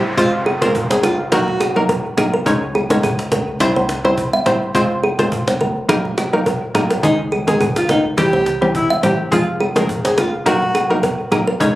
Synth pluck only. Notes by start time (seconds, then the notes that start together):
Already playing: G3 C4 E4 C5
0.17 G#3 C4 F4 C5
0.62 G#3 C4 F4 C5
1.32 F#3 A#3 D#4 A#4
1.76 F#3 A#3 D#4 A#4
2.17 F#3 A#3 D#4 A#4
2.46 G#3 C#4 D#4 C#5
2.90 G#3 C#4 D#4 C#5
3.60 G3 C4 E4 C5
4.04 G3 C4 E4 C5
4.46 G3 C4 E4 C5
4.75 G#3 C4 F4 C5
5.19 G#3 C4 F4 C5
5.89 F#3 A#3 D#4 A#4
6.33 F#3 A#3 D#4 A#4
6.75 F#3 A#3 D#4 A#4
7.03 D#3 G#3 C#4 G#4
7.47 D#3 G#3 C#4 G#4
8.17 E3 G3 C4 G4
8.61 E3 G3 C4 G4
9.03 E3 G3 C4 G4
9.31 F3 G#3 C4 G#4
9.76 F3 G#3 C4 G#4
10.46 F#3 A#3 D#4 A#4
10.90 F#3 A#3 D#4 A#4
11.32 F#3 A#3 D#4 A#4
11.60 G#3 C#4 D#4 C#5